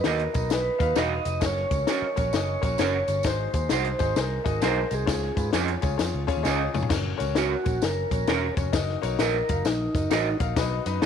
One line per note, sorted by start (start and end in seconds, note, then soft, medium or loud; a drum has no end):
0.00 0.30 B2 medium
0.00 0.27 D#4 medium
0.00 0.27 F#4 medium
0.00 0.05 B4 medium
0.00 0.27 B4 medium
0.00 0.28 D#5 medium
0.00 snare loud
0.04 0.26 D#2 medium
0.04 0.21 D#4 medium
0.04 0.21 F#4 medium
0.04 0.53 A#4 medium
0.04 0.21 B4 medium
0.04 0.22 D#5 medium
0.04 closed hi-hat medium
0.04 tambourine medium
0.19 closed hi-hat soft
0.33 0.68 B1 medium
0.33 0.47 D#4 medium
0.33 0.47 F#4 medium
0.33 0.47 B4 medium
0.33 0.47 D#5 medium
0.33 kick medium
0.33 closed hi-hat medium
0.33 tambourine medium
0.49 0.73 D#4 medium
0.49 0.73 F#4 medium
0.49 0.74 B4 medium
0.49 0.74 D#5 medium
0.49 snare loud
0.49 closed hi-hat medium
0.49 tambourine medium
0.53 0.99 B4 medium
0.78 0.92 D#2 medium
0.78 0.92 D#4 medium
0.78 0.92 F#4 medium
0.78 0.92 B4 medium
0.78 0.92 F5 loud
0.78 kick medium
0.78 closed hi-hat medium
0.78 tambourine medium
0.95 1.18 E1 medium
0.95 1.19 D#4 medium
0.95 1.12 D#4 medium
0.95 1.19 F#4 medium
0.95 1.12 F#4 medium
0.95 1.19 B4 medium
0.95 1.13 B4 medium
0.95 1.13 D#5 loud
0.95 1.44 D#5 loud
0.95 1.19 F5 loud
0.95 snare loud
0.95 closed hi-hat medium
0.95 tambourine medium
1.25 1.38 F1 loud
1.25 1.38 D#4 medium
1.25 1.38 F#4 medium
1.25 1.38 B4 medium
1.25 1.38 D#5 medium
1.25 closed hi-hat medium
1.25 tambourine medium
1.40 1.63 F#1 loud
1.40 1.65 C#4 medium
1.40 1.65 F#4 medium
1.40 1.65 A#4 medium
1.40 1.65 C#5 medium
1.40 kick loud
1.40 snare loud
1.40 closed hi-hat medium
1.40 tambourine medium
1.46 2.64 C#5 loud
1.56 snare soft
1.70 1.83 C#2 medium
1.70 1.84 C#4 medium
1.70 1.84 F#4 medium
1.70 1.84 A#4 medium
1.70 1.84 C#5 medium
1.70 kick medium
1.70 closed hi-hat medium
1.70 tambourine medium
1.87 2.11 C#4 medium
1.87 2.04 C#4 medium
1.87 2.11 F#4 medium
1.87 2.04 F#4 medium
1.87 2.11 A#4 medium
1.87 2.04 A#4 medium
1.87 2.05 C#5 medium
1.87 2.11 D#5 medium
1.87 snare loud
1.87 closed hi-hat medium
1.87 tambourine loud
2.02 muted picked electric bass stroke soft
2.15 2.29 A#1 medium
2.15 2.29 C#4 medium
2.15 2.29 F#4 medium
2.15 2.29 A#4 medium
2.15 2.29 C#5 loud
2.15 kick medium
2.15 closed hi-hat medium
2.15 tambourine soft
2.33 2.55 F#1 medium
2.33 2.56 C#4 medium
2.33 2.57 F#4 medium
2.33 2.56 A#4 medium
2.33 2.57 D#5 medium
2.33 snare loud
2.33 closed hi-hat medium
2.33 tambourine medium
2.61 2.75 A#1 medium
2.61 2.75 C#4 medium
2.61 2.75 F#4 medium
2.61 2.75 A#4 medium
2.61 2.75 C#5 loud
2.61 3.28 C#5 medium
2.61 kick medium
2.61 closed hi-hat medium
2.61 tambourine medium
2.78 3.01 F#1 medium
2.78 3.02 C#4 medium
2.78 2.95 C#4 medium
2.78 3.02 F#4 medium
2.78 2.96 F#4 medium
2.78 3.02 A#4 medium
2.78 2.96 A#4 medium
2.78 3.02 C#5 loud
2.78 2.96 C#5 medium
2.78 snare loud
2.78 closed hi-hat medium
2.78 tambourine medium
3.08 3.20 G1 medium
3.08 3.21 C#4 medium
3.08 3.21 F#4 medium
3.08 3.21 A#4 medium
3.08 3.21 C#5 medium
3.08 closed hi-hat medium
3.08 tambourine medium
3.23 3.46 G#1 loud
3.23 3.96 G#2 medium
3.23 3.48 D#4 medium
3.23 3.48 F#4 medium
3.23 3.48 G#4 medium
3.23 3.49 C5 loud
3.23 4.20 C5 medium
3.23 kick loud
3.23 snare loud
3.23 closed hi-hat medium
3.23 tambourine medium
3.54 3.66 D#2 medium
3.54 3.67 D#4 medium
3.54 3.67 F#4 medium
3.54 3.67 G#4 medium
3.54 3.67 C5 medium
3.54 kick medium
3.54 closed hi-hat medium
3.54 tambourine medium
3.69 3.92 C2 medium
3.69 3.86 G#3 medium
3.69 3.93 D#4 medium
3.69 3.87 D#4 medium
3.69 3.94 F#4 medium
3.69 3.87 F#4 medium
3.69 3.93 G#4 medium
3.69 3.94 C5 medium
3.69 3.87 C5 medium
3.69 snare loud
3.69 closed hi-hat medium
3.69 tambourine loud
3.85 closed hi-hat medium
3.99 4.12 G#1 medium
3.99 4.12 D#4 medium
3.99 4.13 F#4 medium
3.99 4.13 G#4 medium
3.99 4.12 C5 loud
3.99 kick medium
3.99 closed hi-hat medium
3.99 tambourine medium
4.16 4.38 C2 medium
4.16 4.40 D#4 medium
4.16 4.40 F#4 medium
4.16 4.40 G#4 medium
4.16 4.95 A#4 medium
4.16 4.40 C5 medium
4.16 snare loud
4.16 closed hi-hat medium
4.16 tambourine medium
4.44 4.58 G#1 medium
4.44 4.58 D#4 medium
4.44 4.58 F#4 medium
4.44 4.58 G#4 medium
4.44 4.58 D#5 loud
4.44 kick medium
4.44 closed hi-hat medium
4.44 tambourine soft
4.61 4.84 B1 medium
4.61 4.78 G#3 medium
4.61 4.85 D#4 medium
4.61 4.78 D#4 medium
4.61 4.85 F#4 medium
4.61 4.79 F#4 medium
4.61 4.85 G#4 medium
4.61 4.85 C5 loud
4.61 4.79 C5 medium
4.61 snare loud
4.61 closed hi-hat medium
4.61 tambourine medium
4.90 5.03 C2 medium
4.90 5.04 D#4 medium
4.90 5.04 F#4 medium
4.90 5.04 G#4 medium
4.90 5.51 G#4 medium
4.90 5.04 C5 medium
4.90 closed hi-hat medium
4.90 tambourine medium
5.06 5.29 C#2 loud
5.06 5.78 C#3 medium
5.06 5.30 C#4 medium
5.06 5.30 F4 medium
5.06 5.31 G#4 medium
5.06 5.30 C#5 loud
5.06 kick loud
5.06 snare loud
5.06 closed hi-hat loud
5.06 tambourine medium
5.22 snare soft
5.36 5.49 G#2 medium
5.36 5.49 C#4 medium
5.36 5.50 F4 medium
5.36 5.50 G#4 medium
5.36 5.50 B4 medium
5.36 kick medium
5.36 closed hi-hat medium
5.36 tambourine medium
5.53 5.75 F2 medium
5.53 5.77 C#4 medium
5.53 5.69 C#4 medium
5.53 5.77 F4 medium
5.53 5.70 F4 medium
5.53 5.77 G#4 medium
5.53 5.70 G#4 medium
5.53 5.77 C#5 medium
5.53 5.70 C#5 medium
5.53 snare loud
5.53 closed hi-hat medium
5.53 tambourine medium
5.68 closed hi-hat medium
5.81 5.95 C#2 medium
5.81 5.95 C#4 medium
5.81 5.95 F4 medium
5.81 5.96 G#4 medium
5.81 5.96 C#5 medium
5.81 kick medium
5.81 closed hi-hat medium
5.81 tambourine medium
5.97 6.10 F2 medium
5.97 6.22 C#4 medium
5.97 6.22 F4 medium
5.97 6.22 G#4 medium
5.97 6.22 C#5 medium
5.97 snare loud
5.97 closed hi-hat medium
5.97 tambourine medium
6.14 6.25 C#2 medium
6.27 6.41 C#4 loud
6.27 6.41 F4 loud
6.27 6.41 G#4 loud
6.27 6.41 C#5 loud
6.27 kick medium
6.27 closed hi-hat medium
6.27 tambourine medium
6.37 6.43 D#2 medium
6.43 6.67 C#2 medium
6.43 6.67 C#4 loud
6.43 6.61 C#4 medium
6.43 6.67 F4 loud
6.43 6.61 F4 medium
6.43 6.67 G#4 loud
6.43 6.61 G#4 medium
6.43 6.62 C#5 medium
6.43 6.68 D#5 loud
6.43 snare medium
6.43 tambourine medium
6.73 6.81 F1 medium
6.73 6.87 C#4 medium
6.73 6.87 F4 medium
6.73 6.87 G#4 medium
6.73 6.87 C#5 medium
6.73 mid tom medium
6.73 tambourine medium
6.82 floor tom medium
6.89 7.12 F#1 medium
6.89 7.13 C#4 loud
6.89 7.13 F#4 medium
6.89 7.14 A#4 medium
6.89 7.13 C#5 loud
6.89 kick loud
6.89 snare loud
6.89 crash medium
6.89 tambourine medium
7.18 7.54 C#2 medium
7.18 7.32 C#4 loud
7.18 7.32 F#4 medium
7.18 7.32 A#4 medium
7.18 7.32 C#5 loud
7.18 closed hi-hat medium
7.18 tambourine medium
7.35 7.59 C#4 medium
7.35 7.52 C#4 medium
7.35 7.59 F#4 medium
7.35 7.52 F#4 medium
7.35 7.84 F#4 medium
7.35 7.59 A#4 medium
7.35 7.53 A#4 medium
7.35 7.59 C#5 medium
7.35 7.53 C#5 medium
7.35 snare loud
7.35 closed hi-hat medium
7.35 tambourine medium
7.64 7.78 A#1 medium
7.64 7.78 C#4 medium
7.64 7.78 F#4 medium
7.64 7.78 A#4 medium
7.64 7.78 C#5 medium
7.64 kick medium
7.64 closed hi-hat medium
7.64 tambourine soft
7.82 8.04 F#1 medium
7.82 8.06 C#4 medium
7.82 8.06 F#4 medium
7.82 8.06 A#4 medium
7.82 8.55 A#4 loud
7.82 8.06 C#5 medium
7.82 snare loud
7.82 closed hi-hat medium
7.82 tambourine medium
8.11 8.23 A#1 medium
8.11 8.24 C#4 medium
8.11 8.25 F#4 medium
8.11 8.25 A#4 medium
8.11 8.25 C#5 medium
8.11 kick medium
8.11 closed hi-hat medium
8.11 tambourine medium
8.27 8.49 E1 medium
8.27 8.51 C#4 medium
8.27 8.44 C#4 medium
8.27 8.52 F#4 medium
8.27 8.44 F#4 medium
8.27 8.51 A#4 medium
8.27 8.44 A#4 medium
8.27 8.51 C#5 loud
8.27 8.45 C#5 medium
8.27 snare loud
8.27 closed hi-hat medium
8.27 tambourine medium
8.56 8.69 F1 medium
8.56 8.70 C#4 medium
8.56 8.70 F#4 medium
8.56 8.70 A#4 medium
8.56 8.71 C#5 medium
8.56 kick medium
8.56 closed hi-hat medium
8.56 tambourine medium
8.72 8.95 F#1 medium
8.72 8.97 D#4 loud
8.72 8.97 F#4 medium
8.72 8.96 A#4 medium
8.72 8.97 D#5 loud
8.72 kick loud
8.72 snare loud
8.72 closed hi-hat medium
8.72 tambourine medium
8.89 snare soft
9.02 9.15 B1 medium
9.02 9.15 D#4 loud
9.02 9.16 F#4 medium
9.02 9.16 A#4 medium
9.02 9.16 C#5 loud
9.02 closed hi-hat medium
9.02 tambourine medium
9.19 9.41 A#1 medium
9.19 9.43 D#4 medium
9.19 9.35 D#4 medium
9.19 9.43 F#4 medium
9.19 9.35 F#4 medium
9.19 9.43 A#4 medium
9.19 9.67 A#4 medium
9.19 9.36 A#4 medium
9.19 9.43 D#5 medium
9.19 9.36 D#5 medium
9.19 snare loud
9.19 closed hi-hat medium
9.19 tambourine medium
9.49 9.61 F#1 medium
9.49 9.62 D#4 medium
9.49 9.62 F#4 medium
9.49 9.62 A#4 medium
9.49 9.62 F5 medium
9.49 kick medium
9.49 closed hi-hat medium
9.49 tambourine medium
9.65 9.87 A#1 medium
9.65 9.89 D#4 medium
9.65 10.37 D#4 medium
9.65 9.89 F#4 medium
9.65 9.89 A#4 medium
9.65 9.89 D#5 medium
9.65 snare loud
9.65 closed hi-hat medium
9.65 tambourine medium
9.95 10.07 F#1 medium
9.95 10.08 D#4 medium
9.95 10.08 F#4 medium
9.95 10.08 A#4 medium
9.95 10.08 D#5 medium
9.95 kick medium
9.95 closed hi-hat medium
9.95 tambourine soft
10.10 10.33 A1 medium
10.10 10.34 D#4 medium
10.10 10.27 D#4 medium
10.10 10.34 F#4 medium
10.10 10.27 F#4 medium
10.10 10.34 A#4 medium
10.10 10.28 A#4 medium
10.10 10.35 D#5 loud
10.10 10.28 D#5 medium
10.10 snare loud
10.10 closed hi-hat medium
10.10 tambourine medium
10.40 10.52 A#1 medium
10.40 10.53 D#4 medium
10.40 10.53 F#4 medium
10.40 10.53 A#4 medium
10.40 10.53 F5 medium
10.40 kick medium
10.40 closed hi-hat medium
10.40 tambourine medium
10.56 10.78 B1 loud
10.56 11.06 B2 medium
10.56 10.80 D#4 loud
10.56 10.80 F#4 loud
10.56 10.80 B4 loud
10.56 10.81 D#5 loud
10.56 kick loud
10.56 snare loud
10.56 closed hi-hat medium
10.56 tambourine medium
10.86 10.98 F#2 medium
10.86 10.99 D#4 loud
10.86 10.99 F#4 medium
10.86 10.99 B4 loud
10.86 10.99 D#5 loud
10.86 closed hi-hat medium
10.86 tambourine medium
11.02 11.06 D#2 medium
11.02 11.06 D#4 medium
11.02 11.06 F#4 medium
11.02 11.06 D#5 medium
11.02 snare loud
11.02 closed hi-hat medium